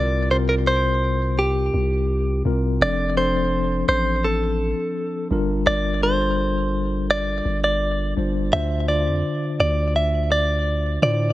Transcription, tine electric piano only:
0.00 0.19 C3 medium
0.00 0.19 C4 medium
0.00 0.20 F4 medium
0.00 0.20 A#4 medium
0.31 1.27 C3 medium
0.31 1.27 C4 medium
0.31 1.28 F4 medium
0.31 1.28 A#4 medium
2.45 2.69 C3 medium
2.45 2.69 C4 medium
2.45 2.70 F4 medium
2.45 2.70 A#4 loud
2.80 3.05 F3 medium
2.80 3.05 C4 medium
2.80 3.05 D4 medium
2.80 3.06 A4 medium
3.16 4.13 F3 medium
3.16 4.13 C4 medium
3.16 4.13 D4 medium
3.16 4.14 A4 medium
5.30 5.88 G3 loud
5.30 5.88 D4 medium
5.30 5.88 F4 medium
5.30 5.89 A#4 loud
6.02 6.99 G3 medium
6.02 6.99 D4 medium
6.02 6.99 F4 medium
6.02 7.00 A4 medium
8.16 8.40 G3 medium
8.16 8.41 D4 medium
8.16 8.41 F4 medium
8.16 8.41 C5 medium
8.52 8.76 D3 medium
8.52 8.76 D4 medium
8.52 8.77 F4 medium
8.52 8.77 C5 medium
8.88 9.84 D3 medium
8.88 9.85 D4 medium
8.88 9.85 F4 medium
8.88 9.85 D5 medium
11.02 11.26 D3 medium
11.02 11.26 D4 medium
11.02 11.27 F4 medium
11.02 11.27 C5 medium

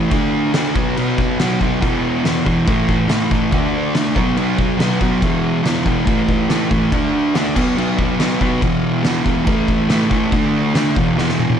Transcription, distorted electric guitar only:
0.00 0.10 A2 medium
0.00 0.10 E3 loud
0.00 0.10 A3 medium
0.11 0.52 D3 medium
0.11 0.52 A3 loud
0.11 0.54 D4 loud
0.53 0.73 D3 medium
0.53 0.74 A3 medium
0.53 0.75 D4 medium
0.74 0.95 B2 medium
0.74 0.96 F#3 medium
0.74 0.97 B3 loud
0.96 1.38 B2 medium
0.96 1.38 F#3 loud
0.96 1.39 B3 loud
1.39 1.59 B2 medium
1.39 1.60 F#3 loud
1.39 1.61 B3 medium
1.60 1.80 B2 loud
1.60 1.81 F#3 medium
1.60 1.81 B3 medium
1.80 2.23 E2 loud
1.80 2.24 B2 loud
1.80 2.24 E3 loud
2.24 2.44 E2 medium
2.24 2.45 B2 medium
2.24 2.46 E3 loud
2.45 2.65 E2 medium
2.45 2.66 B2 medium
2.45 2.66 E3 medium
2.67 3.08 A2 loud
2.67 3.09 E3 loud
2.67 3.09 A3 loud
3.09 3.30 A2 medium
3.09 3.31 E3 medium
3.09 3.32 A3 medium
3.31 3.51 A2 medium
3.31 3.52 E3 medium
3.31 3.52 A3 loud
3.52 3.94 D3 loud
3.52 3.95 A3 loud
3.52 3.96 D4 loud
3.95 4.15 D3 medium
3.95 4.15 A3 medium
3.95 4.16 D4 medium
4.16 4.36 B2 medium
4.16 4.37 F#3 loud
4.16 4.37 B3 loud
4.37 4.77 B2 medium
4.37 4.78 F#3 loud
4.37 4.79 B3 loud
4.78 4.99 B2 medium
4.78 5.00 F#3 loud
4.78 5.01 B3 loud
5.00 5.21 B2 medium
5.00 5.21 F#3 loud
5.00 5.22 B3 medium
5.21 5.63 E2 medium
5.21 5.63 B2 loud
5.21 5.64 E3 loud
5.64 5.84 E2 medium
5.64 5.85 B2 medium
5.64 5.86 E3 medium
5.85 6.06 E2 medium
5.85 6.05 B2 medium
5.85 6.05 E3 medium
6.05 6.48 A2 loud
6.05 6.48 E3 medium
6.05 6.49 A3 medium
6.49 6.69 A2 medium
6.49 6.70 E3 medium
6.49 6.71 A3 medium
6.71 6.91 A2 medium
6.71 6.91 E3 medium
6.71 6.91 A3 loud
6.91 7.33 D3 medium
6.91 7.34 A3 loud
6.91 7.35 D4 loud
7.34 7.55 D3 medium
7.34 7.55 A3 medium
7.34 7.56 D4 loud
7.56 7.75 B2 medium
7.56 7.77 F#3 loud
7.56 7.78 B3 loud
7.77 8.18 B2 medium
7.77 8.19 F#3 loud
7.77 8.20 B3 loud
8.19 8.38 B2 medium
8.19 8.40 F#3 medium
8.19 8.41 B3 loud
8.39 8.60 B2 medium
8.39 8.61 F#3 loud
8.39 8.62 B3 loud
8.61 9.02 E2 loud
8.61 9.03 B2 loud
8.61 9.04 E3 loud
9.03 9.24 E2 medium
9.03 9.24 B2 medium
9.03 9.25 E3 medium
9.25 9.46 E2 medium
9.25 9.45 B2 medium
9.25 9.46 E3 loud
9.46 9.88 A2 medium
9.46 9.89 E3 loud
9.46 9.90 A3 loud
9.89 10.09 A2 medium
9.89 10.10 E3 medium
9.89 10.11 A3 loud
10.10 10.31 A2 medium
10.10 10.31 E3 loud
10.10 10.32 A3 medium
10.32 10.74 D3 loud
10.32 10.75 A3 loud
10.32 10.76 D4 loud
10.75 10.95 D3 medium
10.75 10.96 A3 medium
10.75 10.96 D4 medium
10.97 11.16 E2 loud
10.97 11.17 B2 loud
10.97 11.19 E3 loud
11.18 11.59 E2 medium
11.18 11.60 B2 medium
11.18 11.60 E3 medium

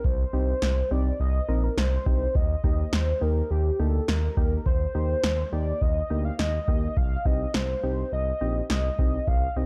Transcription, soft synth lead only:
0.05 0.93 C5 loud
0.91 1.19 D5 medium
1.20 1.65 D#5 loud
1.63 1.77 A#4 medium
1.78 2.37 C5 loud
2.35 2.95 D#5 loud
2.93 3.24 C5 loud
3.22 3.50 A#4 medium
3.51 3.81 G4 loud
3.79 4.10 A4 medium
4.08 4.66 A#4 loud
4.66 5.54 C5 loud
5.52 5.83 D5 loud
5.81 6.26 D#5 loud
6.25 6.39 F5 loud
6.39 6.98 D#5 loud
6.97 7.28 F5 loud
7.26 7.56 D#5 loud
7.55 8.12 C5 loud
8.12 8.66 D#5 loud
8.70 9.29 D#5 loud
9.28 9.58 F5 loud
9.56 9.66 D#5 loud

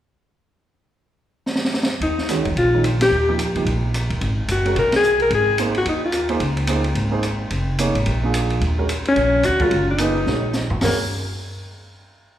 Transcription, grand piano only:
2.30 2.44 D#3 medium
2.30 2.45 G#3 medium
2.30 2.45 C#4 medium
2.30 2.45 F#4 medium
2.74 2.83 D#3 soft
2.74 2.83 G#3 soft
2.74 2.84 C#4 medium
2.74 2.84 D#4 medium
3.29 3.38 F3 medium
3.29 3.38 A#3 medium
3.29 3.38 D#4 soft
3.29 3.38 G4 medium
3.56 3.65 F3 medium
3.56 3.66 A#3 soft
3.56 3.66 D#4 soft
3.56 3.66 G4 medium
4.65 4.75 G#3 medium
4.65 4.76 C#4 medium
4.65 4.76 F#4 medium
4.65 4.76 A#4 medium
5.59 5.74 A#3 medium
5.59 5.74 D#4 medium
5.59 5.74 G#4 medium
5.59 5.74 C5 medium
6.29 6.40 A#3 medium
6.29 6.40 D#4 medium
6.29 6.40 G#4 medium
6.29 6.40 C5 medium
6.68 6.83 A#3 medium
6.68 6.83 D#4 medium
6.68 6.83 G#4 medium
6.68 6.84 C5 medium
7.11 7.22 A#3 medium
7.11 7.22 D#4 medium
7.11 7.22 G#4 medium
7.11 7.22 C5 medium
7.79 7.94 A#3 medium
7.79 7.94 D#4 medium
7.79 7.94 G#4 medium
7.79 7.94 C#5 medium
8.23 8.59 A#3 medium
8.23 8.60 D4 soft
8.23 8.60 F4 soft
8.23 8.60 G#4 medium
8.78 8.88 G#3 medium
8.78 8.88 C#4 soft
8.78 8.88 F#4 medium
8.78 8.88 A#4 medium
9.60 9.70 G#3 medium
9.60 9.71 C#4 medium
9.60 9.71 F#4 medium
9.60 9.71 A#4 medium
9.99 10.14 A#3 medium
9.99 10.14 D#4 medium
9.99 10.14 G#4 medium
9.99 10.15 B4 medium
10.28 10.42 G#3 soft
10.28 10.42 C#4 soft
10.28 10.42 F#4 soft
10.28 10.42 A#4 soft
10.82 10.96 G#3 medium
10.82 10.97 C#4 medium
10.82 10.97 F#4 medium
10.82 10.97 A#4 medium

